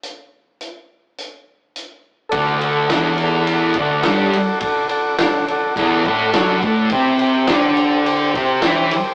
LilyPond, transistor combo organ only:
\new Staff \with { instrumentName = "Transistor combo organ" } { \time 4/4 \key d \mixolydian \tempo 4 = 105 r1 | <a' d'' fis''>8 <a' d'' fis''>8 <a' d'' fis''>8 <a' d'' fis''>8 <a' d'' fis''>8 <a' d'' fis''>8 <a' d'' fis''>8 <a' d'' fis''>8 | <a' d'' fis''>8 <a' d'' fis''>8 <a' d'' fis''>8 <a' d'' fis''>8 <a' d'' fis''>8 <a' d'' fis''>8 <a' d'' fis''>8 <a' d'' fis''>8 | <g' c'' g''>8 <g' c'' g''>8 <g' c'' g''>8 <g' c'' g''>8 <g' c'' g''>8 <g' c'' g''>8 <g' c'' g''>8 <g' c'' g''>8 | }